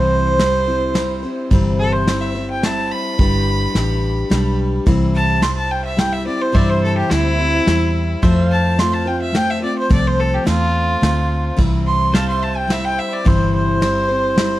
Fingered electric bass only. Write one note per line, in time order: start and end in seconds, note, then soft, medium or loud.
0.00 1.23 C2 medium
1.51 2.91 G1 medium
3.19 3.66 G1 medium
3.75 4.23 A1 medium
4.31 4.78 B1 medium
4.87 6.27 C2 medium
6.55 7.02 G2 medium
7.11 7.59 D2 medium
7.67 8.15 E2 medium
8.23 9.63 F2 medium
9.91 10.37 C2 medium
10.47 10.95 E2 medium
11.02 11.50 D2 medium
11.58 12.98 C2 medium
13.26 14.60 G1 medium